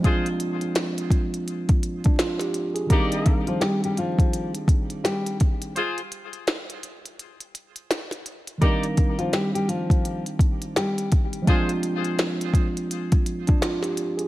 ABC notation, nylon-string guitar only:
X:1
M:4/4
L:1/16
Q:"Swing 16ths" 1/4=84
K:Cm
V:1 name="Nylon-string guitar"
z16 | [B,B]3 [F,F] [G,G] [G,G] [F,F]3 z3 [G,G]2 z2 | z16 | [B,B]3 [F,F] [G,G] [G,G] [F,F]3 z3 [G,G]2 z2 |
z16 |]